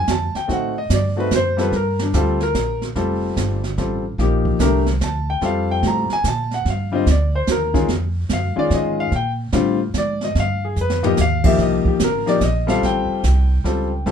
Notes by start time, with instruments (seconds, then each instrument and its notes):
0.07 upright bass F2, grand piano A5, kick, snare, hi-hat pedal
0.35 grand piano G5, muted upright bass stroke, snare
0.48 upright bass A2, grand piano A3 C4 D#4 F#4, brush sweep, kick, snare
0.52 grand piano F#5
0.78 grand piano D#5
0.90 upright bass G2, kick, snare, hi-hat pedal
0.94 grand piano D5
1.16 grand piano A3 C4 D#4 F#4 B4
1.31 upright bass F#2, kick, snare, hi-hat pedal
1.35 grand piano C5
1.57 grand piano G3 C4 F4 A4, snare
1.61 grand piano B4
1.72 upright bass G2, brush sweep, kick, snare
1.76 grand piano A#4
1.99 grand piano D4, snare
2.13 upright bass D2, grand piano G3 C4 F4 A4, kick, snare, hi-hat pedal
2.18 grand piano F4
2.40 grand piano A#4, snare
2.54 upright bass A#1, kick, snare, hi-hat pedal
2.82 snare
2.96 upright bass F1, grand piano G3 C4 F4 A4, brush sweep, kick, snare
3.37 upright bass G1, kick, snare, hi-hat pedal
3.64 snare
3.78 upright bass A1, grand piano G3 C4 F4 A4, kick, snare
4.18 upright bass A#1, grand piano F3 A#3 D#4 G4, brush sweep, kick, snare
4.45 kick
4.59 upright bass C2, grand piano A3 D4 G4 A#4, kick, snare, hi-hat pedal
4.86 snare
5.00 upright bass D2, grand piano A5, kick, snare, hi-hat pedal
5.30 grand piano G5
5.41 upright bass F2, grand piano G3 C4 F4 A4, brush sweep, kick, snare
5.46 grand piano F5
5.71 grand piano G5
5.83 upright bass A2, kick, snare
5.88 grand piano A#5
6.10 grand piano G#5, muted upright bass stroke, snare
6.24 upright bass A#2, kick, snare, hi-hat pedal
6.28 grand piano A5
6.51 grand piano F#5, snare
6.65 upright bass G2, brush sweep, kick, snare
6.70 grand piano F5
6.91 grand piano D3 G3 C4 F4
6.95 grand piano D#5
7.06 upright bass D2, kick, snare, hi-hat pedal
7.11 grand piano D5
7.35 grand piano C5
7.47 upright bass D#2, kick, snare, hi-hat pedal
7.51 grand piano A#4
7.73 grand piano D#3 G#3 C#4 F4, kick, snare
7.88 upright bass F2, brush sweep, kick, snare
8.29 upright bass F#2, kick, snare, hi-hat pedal
8.33 grand piano F5
8.56 grand piano D#3 G#3 C#4 F4 D5, muted upright bass stroke
8.70 upright bass G#2, kick, snare
8.75 grand piano D#5
9.00 grand piano F5
9.12 upright bass A#2, brush sweep, kick, snare
9.16 grand piano G5
9.52 upright bass A2, grand piano D3 G3 C4 F4, kick, snare, hi-hat pedal
9.94 upright bass G#2, kick, snare, hi-hat pedal
9.98 grand piano D5
10.21 grand piano D#5, snare
10.35 upright bass G2, brush sweep, kick, snare
10.40 grand piano F5
10.65 grand piano G#4
10.76 upright bass F2, hi-hat pedal
10.81 grand piano B4
10.90 snare
11.03 grand piano F3 A#3 D#4 G4 D#5, floor tom
11.17 upright bass D#2, snare, hi-hat pedal
11.21 grand piano F5
11.44 grand piano F3 A#3 D#4 G4 E5, kick, crash
11.58 upright bass C2, brush sweep, kick, snare
11.62 grand piano D#5
11.85 grand piano G4, muted upright bass stroke, kick
12.00 upright bass A1, kick, snare, hi-hat pedal
12.04 grand piano A#4
12.26 grand piano F3 A#3 D#4 G4 D5, snare
12.41 upright bass A#1, kick, snare, hi-hat pedal
12.45 grand piano D#5
12.67 grand piano G3 C4 F4 A4 F5, snare
12.82 upright bass A1, grand piano G5, brush sweep, kick, snare
13.09 muted upright bass stroke
13.23 upright bass C2, kick, snare, hi-hat pedal
13.64 upright bass C#2, grand piano G3 C4 F4 A4, kick, snare
14.06 upright bass D2, grand piano G3 C4 F4 A4, brush sweep, kick, snare